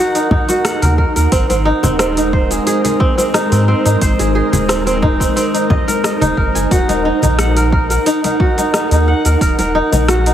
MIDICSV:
0, 0, Header, 1, 5, 480
1, 0, Start_track
1, 0, Tempo, 674157
1, 938, Time_signature, 4, 2, 24, 8
1, 7361, End_track
2, 0, Start_track
2, 0, Title_t, "Ambient pad"
2, 0, Program_c, 0, 92
2, 0, Note_on_c, 0, 63, 80
2, 0, Note_on_c, 0, 70, 75
2, 0, Note_on_c, 0, 78, 88
2, 910, Note_off_c, 0, 78, 0
2, 936, Note_on_c, 0, 56, 75
2, 939, Note_on_c, 0, 72, 87
2, 4749, Note_off_c, 0, 56, 0
2, 4750, Note_off_c, 0, 72, 0
2, 4777, Note_on_c, 0, 78, 88
2, 7361, Note_off_c, 0, 63, 0
2, 7361, Note_off_c, 0, 70, 0
2, 7361, Note_off_c, 0, 78, 0
2, 7361, End_track
3, 0, Start_track
3, 0, Title_t, "Kora"
3, 0, Program_c, 1, 46
3, 0, Note_on_c, 1, 63, 76
3, 0, Note_on_c, 1, 66, 108
3, 0, Note_on_c, 1, 70, 77
3, 105, Note_off_c, 1, 63, 0
3, 108, Note_on_c, 1, 63, 72
3, 217, Note_off_c, 1, 63, 0
3, 220, Note_on_c, 1, 63, 70
3, 344, Note_off_c, 1, 66, 0
3, 347, Note_on_c, 1, 66, 73
3, 459, Note_on_c, 1, 78, 81
3, 534, Note_off_c, 1, 70, 0
3, 584, Note_on_c, 1, 70, 81
3, 695, Note_off_c, 1, 70, 0
3, 698, Note_on_c, 1, 70, 79
3, 822, Note_off_c, 1, 70, 0
3, 825, Note_on_c, 1, 70, 73
3, 938, Note_on_c, 1, 60, 105
3, 1061, Note_off_c, 1, 60, 0
3, 1064, Note_on_c, 1, 60, 74
3, 1146, Note_off_c, 1, 78, 0
3, 1174, Note_off_c, 1, 63, 0
3, 1177, Note_on_c, 1, 63, 104
3, 1302, Note_off_c, 1, 60, 0
3, 1305, Note_on_c, 1, 60, 81
3, 1388, Note_off_c, 1, 66, 0
3, 1415, Note_off_c, 1, 60, 0
3, 1418, Note_on_c, 1, 60, 86
3, 1544, Note_off_c, 1, 63, 0
3, 1547, Note_on_c, 1, 63, 73
3, 1659, Note_on_c, 1, 72, 76
3, 1731, Note_off_c, 1, 70, 0
3, 1786, Note_on_c, 1, 68, 76
3, 1896, Note_off_c, 1, 68, 0
3, 1899, Note_on_c, 1, 68, 88
3, 2021, Note_off_c, 1, 68, 0
3, 2024, Note_on_c, 1, 68, 73
3, 2133, Note_off_c, 1, 60, 0
3, 2135, Note_on_c, 1, 60, 98
3, 2259, Note_off_c, 1, 60, 0
3, 2262, Note_on_c, 1, 60, 81
3, 2374, Note_off_c, 1, 63, 0
3, 2377, Note_on_c, 1, 63, 103
3, 2502, Note_off_c, 1, 60, 0
3, 2504, Note_on_c, 1, 60, 74
3, 2505, Note_off_c, 1, 72, 0
3, 2617, Note_off_c, 1, 60, 0
3, 2620, Note_on_c, 1, 60, 80
3, 2740, Note_off_c, 1, 63, 0
3, 2743, Note_on_c, 1, 63, 77
3, 2859, Note_on_c, 1, 72, 85
3, 2982, Note_off_c, 1, 68, 0
3, 2985, Note_on_c, 1, 68, 77
3, 3095, Note_off_c, 1, 68, 0
3, 3098, Note_on_c, 1, 68, 80
3, 3219, Note_off_c, 1, 68, 0
3, 3222, Note_on_c, 1, 68, 74
3, 3334, Note_off_c, 1, 60, 0
3, 3336, Note_on_c, 1, 60, 105
3, 3461, Note_off_c, 1, 60, 0
3, 3464, Note_on_c, 1, 60, 75
3, 3573, Note_off_c, 1, 63, 0
3, 3576, Note_on_c, 1, 63, 105
3, 3700, Note_off_c, 1, 60, 0
3, 3702, Note_on_c, 1, 60, 76
3, 3705, Note_off_c, 1, 72, 0
3, 3814, Note_off_c, 1, 60, 0
3, 3817, Note_on_c, 1, 60, 91
3, 3941, Note_off_c, 1, 63, 0
3, 3944, Note_on_c, 1, 63, 69
3, 4058, Note_on_c, 1, 75, 97
3, 4184, Note_on_c, 1, 70, 74
3, 4193, Note_off_c, 1, 68, 0
3, 4296, Note_off_c, 1, 75, 0
3, 4299, Note_on_c, 1, 75, 81
3, 4421, Note_off_c, 1, 63, 0
3, 4424, Note_on_c, 1, 63, 94
3, 4534, Note_off_c, 1, 70, 0
3, 4537, Note_on_c, 1, 70, 83
3, 4663, Note_on_c, 1, 80, 93
3, 4778, Note_on_c, 1, 66, 98
3, 4903, Note_off_c, 1, 63, 0
3, 4906, Note_on_c, 1, 63, 82
3, 5017, Note_off_c, 1, 63, 0
3, 5020, Note_on_c, 1, 63, 77
3, 5061, Note_off_c, 1, 75, 0
3, 5098, Note_off_c, 1, 60, 0
3, 5145, Note_off_c, 1, 63, 0
3, 5148, Note_on_c, 1, 63, 73
3, 5261, Note_on_c, 1, 78, 83
3, 5304, Note_off_c, 1, 80, 0
3, 5385, Note_off_c, 1, 70, 0
3, 5387, Note_on_c, 1, 70, 74
3, 5499, Note_off_c, 1, 70, 0
3, 5502, Note_on_c, 1, 70, 84
3, 5624, Note_off_c, 1, 70, 0
3, 5627, Note_on_c, 1, 70, 74
3, 5737, Note_off_c, 1, 63, 0
3, 5740, Note_on_c, 1, 63, 102
3, 5819, Note_off_c, 1, 66, 0
3, 5865, Note_off_c, 1, 63, 0
3, 5868, Note_on_c, 1, 63, 71
3, 5948, Note_off_c, 1, 78, 0
3, 5982, Note_on_c, 1, 66, 94
3, 6105, Note_off_c, 1, 63, 0
3, 6107, Note_on_c, 1, 63, 74
3, 6220, Note_off_c, 1, 63, 0
3, 6222, Note_on_c, 1, 63, 83
3, 6348, Note_off_c, 1, 63, 0
3, 6351, Note_on_c, 1, 63, 75
3, 6463, Note_on_c, 1, 78, 81
3, 6533, Note_off_c, 1, 70, 0
3, 6590, Note_on_c, 1, 70, 72
3, 6701, Note_off_c, 1, 70, 0
3, 6704, Note_on_c, 1, 70, 88
3, 6824, Note_off_c, 1, 70, 0
3, 6826, Note_on_c, 1, 70, 78
3, 6938, Note_off_c, 1, 63, 0
3, 6941, Note_on_c, 1, 63, 99
3, 7023, Note_off_c, 1, 66, 0
3, 7065, Note_off_c, 1, 63, 0
3, 7068, Note_on_c, 1, 63, 79
3, 7150, Note_off_c, 1, 78, 0
3, 7181, Note_on_c, 1, 66, 103
3, 7306, Note_off_c, 1, 63, 0
3, 7309, Note_on_c, 1, 63, 81
3, 7361, Note_off_c, 1, 63, 0
3, 7361, Note_off_c, 1, 66, 0
3, 7361, Note_off_c, 1, 70, 0
3, 7361, End_track
4, 0, Start_track
4, 0, Title_t, "Sub bass"
4, 0, Program_c, 2, 38
4, 587, Note_on_c, 2, 39, 105
4, 744, Note_off_c, 2, 39, 0
4, 829, Note_on_c, 2, 39, 84
4, 904, Note_off_c, 2, 39, 0
4, 941, Note_on_c, 2, 32, 91
4, 1025, Note_off_c, 2, 32, 0
4, 1070, Note_on_c, 2, 32, 93
4, 1226, Note_off_c, 2, 32, 0
4, 1307, Note_on_c, 2, 27, 91
4, 1841, Note_off_c, 2, 27, 0
4, 2505, Note_on_c, 2, 44, 99
4, 2663, Note_off_c, 2, 44, 0
4, 2746, Note_on_c, 2, 44, 85
4, 2822, Note_off_c, 2, 44, 0
4, 2859, Note_on_c, 2, 32, 89
4, 2944, Note_off_c, 2, 32, 0
4, 2984, Note_on_c, 2, 32, 98
4, 3143, Note_off_c, 2, 32, 0
4, 3224, Note_on_c, 2, 27, 87
4, 3759, Note_off_c, 2, 27, 0
4, 4426, Note_on_c, 2, 27, 87
4, 4503, Note_off_c, 2, 27, 0
4, 4541, Note_on_c, 2, 30, 95
4, 4625, Note_off_c, 2, 30, 0
4, 4667, Note_on_c, 2, 30, 96
4, 4743, Note_off_c, 2, 30, 0
4, 4780, Note_on_c, 2, 27, 93
4, 4865, Note_off_c, 2, 27, 0
4, 4906, Note_on_c, 2, 27, 96
4, 5064, Note_off_c, 2, 27, 0
4, 5144, Note_on_c, 2, 34, 85
4, 5680, Note_off_c, 2, 34, 0
4, 6346, Note_on_c, 2, 39, 97
4, 6504, Note_off_c, 2, 39, 0
4, 6587, Note_on_c, 2, 39, 92
4, 6663, Note_off_c, 2, 39, 0
4, 6700, Note_on_c, 2, 27, 97
4, 6785, Note_off_c, 2, 27, 0
4, 6827, Note_on_c, 2, 27, 99
4, 6984, Note_off_c, 2, 27, 0
4, 7067, Note_on_c, 2, 34, 91
4, 7361, Note_off_c, 2, 34, 0
4, 7361, End_track
5, 0, Start_track
5, 0, Title_t, "Drums"
5, 107, Note_on_c, 9, 46, 42
5, 114, Note_on_c, 9, 82, 33
5, 178, Note_off_c, 9, 46, 0
5, 185, Note_off_c, 9, 82, 0
5, 221, Note_on_c, 9, 36, 105
5, 221, Note_on_c, 9, 64, 107
5, 292, Note_off_c, 9, 64, 0
5, 293, Note_off_c, 9, 36, 0
5, 346, Note_on_c, 9, 46, 31
5, 352, Note_on_c, 9, 60, 65
5, 352, Note_on_c, 9, 82, 72
5, 417, Note_off_c, 9, 46, 0
5, 424, Note_off_c, 9, 60, 0
5, 424, Note_off_c, 9, 82, 0
5, 461, Note_on_c, 9, 37, 118
5, 461, Note_on_c, 9, 46, 74
5, 467, Note_on_c, 9, 82, 62
5, 532, Note_off_c, 9, 37, 0
5, 532, Note_off_c, 9, 46, 0
5, 539, Note_off_c, 9, 82, 0
5, 587, Note_on_c, 9, 46, 47
5, 593, Note_on_c, 9, 63, 73
5, 593, Note_on_c, 9, 82, 36
5, 658, Note_off_c, 9, 46, 0
5, 665, Note_off_c, 9, 63, 0
5, 665, Note_off_c, 9, 82, 0
5, 701, Note_on_c, 9, 36, 59
5, 772, Note_off_c, 9, 36, 0
5, 826, Note_on_c, 9, 46, 34
5, 833, Note_on_c, 9, 82, 66
5, 898, Note_off_c, 9, 46, 0
5, 905, Note_off_c, 9, 82, 0
5, 939, Note_on_c, 9, 46, 69
5, 940, Note_on_c, 9, 36, 127
5, 946, Note_on_c, 9, 82, 61
5, 1011, Note_off_c, 9, 36, 0
5, 1011, Note_off_c, 9, 46, 0
5, 1017, Note_off_c, 9, 82, 0
5, 1068, Note_on_c, 9, 46, 44
5, 1070, Note_on_c, 9, 60, 62
5, 1075, Note_on_c, 9, 82, 37
5, 1139, Note_off_c, 9, 46, 0
5, 1141, Note_off_c, 9, 60, 0
5, 1146, Note_off_c, 9, 82, 0
5, 1303, Note_on_c, 9, 60, 71
5, 1307, Note_on_c, 9, 46, 31
5, 1307, Note_on_c, 9, 64, 97
5, 1308, Note_on_c, 9, 63, 67
5, 1314, Note_on_c, 9, 82, 66
5, 1375, Note_off_c, 9, 60, 0
5, 1378, Note_off_c, 9, 64, 0
5, 1379, Note_off_c, 9, 46, 0
5, 1379, Note_off_c, 9, 63, 0
5, 1385, Note_off_c, 9, 82, 0
5, 1418, Note_on_c, 9, 37, 107
5, 1418, Note_on_c, 9, 46, 63
5, 1425, Note_on_c, 9, 82, 60
5, 1489, Note_off_c, 9, 37, 0
5, 1489, Note_off_c, 9, 46, 0
5, 1496, Note_off_c, 9, 82, 0
5, 1546, Note_on_c, 9, 46, 47
5, 1553, Note_on_c, 9, 82, 36
5, 1617, Note_off_c, 9, 46, 0
5, 1624, Note_off_c, 9, 82, 0
5, 1660, Note_on_c, 9, 36, 100
5, 1731, Note_off_c, 9, 36, 0
5, 1785, Note_on_c, 9, 46, 31
5, 1792, Note_on_c, 9, 82, 69
5, 1856, Note_off_c, 9, 46, 0
5, 1863, Note_off_c, 9, 82, 0
5, 1899, Note_on_c, 9, 46, 62
5, 1906, Note_on_c, 9, 82, 56
5, 1970, Note_off_c, 9, 46, 0
5, 1977, Note_off_c, 9, 82, 0
5, 2027, Note_on_c, 9, 46, 44
5, 2029, Note_on_c, 9, 63, 37
5, 2032, Note_on_c, 9, 60, 62
5, 2034, Note_on_c, 9, 82, 33
5, 2098, Note_off_c, 9, 46, 0
5, 2100, Note_off_c, 9, 63, 0
5, 2103, Note_off_c, 9, 60, 0
5, 2105, Note_off_c, 9, 82, 0
5, 2139, Note_on_c, 9, 36, 112
5, 2210, Note_off_c, 9, 36, 0
5, 2265, Note_on_c, 9, 60, 67
5, 2267, Note_on_c, 9, 46, 32
5, 2274, Note_on_c, 9, 82, 72
5, 2336, Note_off_c, 9, 60, 0
5, 2338, Note_off_c, 9, 46, 0
5, 2345, Note_off_c, 9, 82, 0
5, 2380, Note_on_c, 9, 37, 107
5, 2380, Note_on_c, 9, 46, 72
5, 2387, Note_on_c, 9, 82, 65
5, 2452, Note_off_c, 9, 37, 0
5, 2452, Note_off_c, 9, 46, 0
5, 2458, Note_off_c, 9, 82, 0
5, 2506, Note_on_c, 9, 46, 45
5, 2513, Note_on_c, 9, 82, 37
5, 2577, Note_off_c, 9, 46, 0
5, 2584, Note_off_c, 9, 82, 0
5, 2746, Note_on_c, 9, 46, 29
5, 2752, Note_on_c, 9, 82, 71
5, 2817, Note_off_c, 9, 46, 0
5, 2824, Note_off_c, 9, 82, 0
5, 2858, Note_on_c, 9, 46, 70
5, 2859, Note_on_c, 9, 36, 123
5, 2865, Note_on_c, 9, 82, 63
5, 2930, Note_off_c, 9, 36, 0
5, 2930, Note_off_c, 9, 46, 0
5, 2937, Note_off_c, 9, 82, 0
5, 2986, Note_on_c, 9, 46, 42
5, 2989, Note_on_c, 9, 60, 64
5, 2993, Note_on_c, 9, 82, 36
5, 3057, Note_off_c, 9, 46, 0
5, 3060, Note_off_c, 9, 60, 0
5, 3064, Note_off_c, 9, 82, 0
5, 3225, Note_on_c, 9, 63, 66
5, 3226, Note_on_c, 9, 46, 31
5, 3226, Note_on_c, 9, 64, 88
5, 3230, Note_on_c, 9, 60, 58
5, 3233, Note_on_c, 9, 82, 68
5, 3296, Note_off_c, 9, 63, 0
5, 3297, Note_off_c, 9, 64, 0
5, 3298, Note_off_c, 9, 46, 0
5, 3301, Note_off_c, 9, 60, 0
5, 3305, Note_off_c, 9, 82, 0
5, 3341, Note_on_c, 9, 37, 101
5, 3341, Note_on_c, 9, 46, 71
5, 3348, Note_on_c, 9, 82, 59
5, 3412, Note_off_c, 9, 37, 0
5, 3412, Note_off_c, 9, 46, 0
5, 3419, Note_off_c, 9, 82, 0
5, 3467, Note_on_c, 9, 46, 43
5, 3474, Note_on_c, 9, 82, 36
5, 3538, Note_off_c, 9, 46, 0
5, 3545, Note_off_c, 9, 82, 0
5, 3579, Note_on_c, 9, 36, 102
5, 3581, Note_on_c, 9, 64, 93
5, 3583, Note_on_c, 9, 60, 35
5, 3650, Note_off_c, 9, 36, 0
5, 3652, Note_off_c, 9, 64, 0
5, 3655, Note_off_c, 9, 60, 0
5, 3705, Note_on_c, 9, 36, 62
5, 3709, Note_on_c, 9, 46, 31
5, 3716, Note_on_c, 9, 82, 73
5, 3777, Note_off_c, 9, 36, 0
5, 3780, Note_off_c, 9, 46, 0
5, 3787, Note_off_c, 9, 82, 0
5, 3822, Note_on_c, 9, 46, 64
5, 3829, Note_on_c, 9, 82, 56
5, 3893, Note_off_c, 9, 46, 0
5, 3900, Note_off_c, 9, 82, 0
5, 3949, Note_on_c, 9, 46, 42
5, 3956, Note_on_c, 9, 82, 33
5, 4020, Note_off_c, 9, 46, 0
5, 4027, Note_off_c, 9, 82, 0
5, 4059, Note_on_c, 9, 36, 111
5, 4061, Note_on_c, 9, 64, 107
5, 4130, Note_off_c, 9, 36, 0
5, 4133, Note_off_c, 9, 64, 0
5, 4188, Note_on_c, 9, 60, 68
5, 4189, Note_on_c, 9, 46, 29
5, 4195, Note_on_c, 9, 82, 71
5, 4259, Note_off_c, 9, 60, 0
5, 4260, Note_off_c, 9, 46, 0
5, 4267, Note_off_c, 9, 82, 0
5, 4302, Note_on_c, 9, 37, 111
5, 4302, Note_on_c, 9, 46, 65
5, 4309, Note_on_c, 9, 82, 63
5, 4374, Note_off_c, 9, 37, 0
5, 4374, Note_off_c, 9, 46, 0
5, 4381, Note_off_c, 9, 82, 0
5, 4423, Note_on_c, 9, 63, 72
5, 4429, Note_on_c, 9, 46, 44
5, 4436, Note_on_c, 9, 82, 35
5, 4495, Note_off_c, 9, 63, 0
5, 4500, Note_off_c, 9, 46, 0
5, 4507, Note_off_c, 9, 82, 0
5, 4539, Note_on_c, 9, 36, 59
5, 4610, Note_off_c, 9, 36, 0
5, 4666, Note_on_c, 9, 60, 38
5, 4667, Note_on_c, 9, 46, 30
5, 4674, Note_on_c, 9, 82, 76
5, 4737, Note_off_c, 9, 60, 0
5, 4738, Note_off_c, 9, 46, 0
5, 4745, Note_off_c, 9, 82, 0
5, 4779, Note_on_c, 9, 36, 118
5, 4780, Note_on_c, 9, 46, 67
5, 4787, Note_on_c, 9, 82, 58
5, 4850, Note_off_c, 9, 36, 0
5, 4851, Note_off_c, 9, 46, 0
5, 4858, Note_off_c, 9, 82, 0
5, 4907, Note_on_c, 9, 46, 45
5, 4907, Note_on_c, 9, 60, 66
5, 4913, Note_on_c, 9, 82, 34
5, 4978, Note_off_c, 9, 46, 0
5, 4978, Note_off_c, 9, 60, 0
5, 4985, Note_off_c, 9, 82, 0
5, 5142, Note_on_c, 9, 63, 64
5, 5147, Note_on_c, 9, 46, 29
5, 5149, Note_on_c, 9, 60, 58
5, 5153, Note_on_c, 9, 64, 80
5, 5154, Note_on_c, 9, 82, 65
5, 5213, Note_off_c, 9, 63, 0
5, 5218, Note_off_c, 9, 46, 0
5, 5220, Note_off_c, 9, 60, 0
5, 5224, Note_off_c, 9, 64, 0
5, 5225, Note_off_c, 9, 82, 0
5, 5259, Note_on_c, 9, 37, 99
5, 5259, Note_on_c, 9, 46, 65
5, 5266, Note_on_c, 9, 82, 59
5, 5330, Note_off_c, 9, 37, 0
5, 5330, Note_off_c, 9, 46, 0
5, 5337, Note_off_c, 9, 82, 0
5, 5387, Note_on_c, 9, 46, 45
5, 5393, Note_on_c, 9, 82, 33
5, 5458, Note_off_c, 9, 46, 0
5, 5465, Note_off_c, 9, 82, 0
5, 5500, Note_on_c, 9, 36, 108
5, 5571, Note_off_c, 9, 36, 0
5, 5626, Note_on_c, 9, 46, 30
5, 5633, Note_on_c, 9, 82, 72
5, 5697, Note_off_c, 9, 46, 0
5, 5704, Note_off_c, 9, 82, 0
5, 5740, Note_on_c, 9, 46, 63
5, 5747, Note_on_c, 9, 82, 58
5, 5812, Note_off_c, 9, 46, 0
5, 5819, Note_off_c, 9, 82, 0
5, 5868, Note_on_c, 9, 46, 44
5, 5869, Note_on_c, 9, 60, 62
5, 5869, Note_on_c, 9, 63, 33
5, 5875, Note_on_c, 9, 82, 32
5, 5939, Note_off_c, 9, 46, 0
5, 5940, Note_off_c, 9, 63, 0
5, 5941, Note_off_c, 9, 60, 0
5, 5946, Note_off_c, 9, 82, 0
5, 5980, Note_on_c, 9, 36, 102
5, 6051, Note_off_c, 9, 36, 0
5, 6108, Note_on_c, 9, 46, 30
5, 6111, Note_on_c, 9, 60, 63
5, 6115, Note_on_c, 9, 82, 64
5, 6179, Note_off_c, 9, 46, 0
5, 6182, Note_off_c, 9, 60, 0
5, 6186, Note_off_c, 9, 82, 0
5, 6221, Note_on_c, 9, 37, 107
5, 6221, Note_on_c, 9, 46, 71
5, 6228, Note_on_c, 9, 82, 61
5, 6292, Note_off_c, 9, 37, 0
5, 6292, Note_off_c, 9, 46, 0
5, 6299, Note_off_c, 9, 82, 0
5, 6346, Note_on_c, 9, 46, 41
5, 6353, Note_on_c, 9, 82, 34
5, 6418, Note_off_c, 9, 46, 0
5, 6424, Note_off_c, 9, 82, 0
5, 6586, Note_on_c, 9, 46, 32
5, 6593, Note_on_c, 9, 82, 73
5, 6657, Note_off_c, 9, 46, 0
5, 6664, Note_off_c, 9, 82, 0
5, 6700, Note_on_c, 9, 36, 127
5, 6701, Note_on_c, 9, 46, 69
5, 6708, Note_on_c, 9, 82, 55
5, 6771, Note_off_c, 9, 36, 0
5, 6773, Note_off_c, 9, 46, 0
5, 6780, Note_off_c, 9, 82, 0
5, 6825, Note_on_c, 9, 60, 64
5, 6826, Note_on_c, 9, 46, 46
5, 6833, Note_on_c, 9, 82, 34
5, 6896, Note_off_c, 9, 60, 0
5, 6897, Note_off_c, 9, 46, 0
5, 6904, Note_off_c, 9, 82, 0
5, 7067, Note_on_c, 9, 46, 30
5, 7067, Note_on_c, 9, 60, 72
5, 7070, Note_on_c, 9, 63, 65
5, 7073, Note_on_c, 9, 82, 61
5, 7138, Note_off_c, 9, 46, 0
5, 7138, Note_off_c, 9, 60, 0
5, 7141, Note_off_c, 9, 63, 0
5, 7145, Note_off_c, 9, 82, 0
5, 7180, Note_on_c, 9, 37, 103
5, 7180, Note_on_c, 9, 46, 69
5, 7187, Note_on_c, 9, 82, 56
5, 7251, Note_off_c, 9, 37, 0
5, 7251, Note_off_c, 9, 46, 0
5, 7258, Note_off_c, 9, 82, 0
5, 7307, Note_on_c, 9, 46, 46
5, 7314, Note_on_c, 9, 82, 34
5, 7361, Note_off_c, 9, 46, 0
5, 7361, Note_off_c, 9, 82, 0
5, 7361, End_track
0, 0, End_of_file